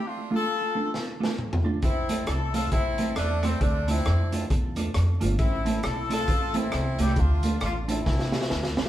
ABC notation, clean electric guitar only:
X:1
M:4/4
L:1/8
Q:"Swing" 1/4=135
K:Ddor
V:1 name="Clean electric guitar"
z [A,DFA] z [A,DFA] z [A,DFA] z [A,DFA] | z [A,CEA] z [A,CEA] z [A,CEA] z [A,CEA] | z [A,DFA] z [A,DFA] z [A,DFA] z [A,DFA] | z [A,CEA] z [A,CEA] z [A,CEA] z [A,CEA] |
z [A,DFA] z [A,DFA] z [CEGc] z [CEGc] |]